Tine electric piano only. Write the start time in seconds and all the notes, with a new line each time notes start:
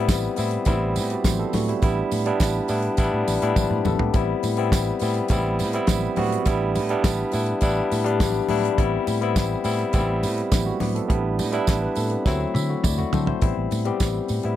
Already playing: G3 B3 C4 E4
0.37 G3 B3 C4 E4
0.66 G3 B3 C4 E4
1.11 F#4 D5
1.25 E4 C5
1.39 C4 A4
1.54 A3 F#4
1.69 G3 E4
1.82 G3 B3 D4 E4
2.26 G3 B3 D4 E4
2.69 G3 B3 D4 E4
2.98 G3 B3 D4 E4
3.42 G3 B3 D4 E4
3.58 E4
3.86 C4 A4
4.00 B3 G4
4.13 G3 B3 C4 E4
4.57 G3 B3 C4 E4
5.02 G3 B3 C4 E4
5.30 G3 B3 C4 E4
5.74 G3 B3 C4 E4
6.17 G3 B3 C4 F#4
6.46 G3 B3 D4 E4
6.90 G3 B3 D4 E4
7.33 G3 B3 D4 E4
7.62 G3 B3 D4 E4
8.04 G3 B3 D4 G4
8.49 G3 B3 D4 E4
8.78 G3 B3 C4 E4
9.21 G3 B3 C4 E4
9.64 G3 B3 C4 E4
9.93 G3 B3 C4 E4
10.52 G3 E4
10.66 A3 F#4
10.80 B3 G4
10.95 C4 A4
11.08 G3 B3 D4 E4
11.52 G3 B3 D4 E4
11.82 D4 B4
11.97 C4 A4
12.11 B3 G4
12.25 F#3 A3 C4 E4
12.54 E5
12.69 A3 F#4
12.84 E4 D5
12.98 A3 F#4
13.12 C4 A4 C5
13.27 E4 C5
13.41 G3 B3 C4 E4
13.85 G3 B3 C4 G4
14.44 G3 B3 C4 E4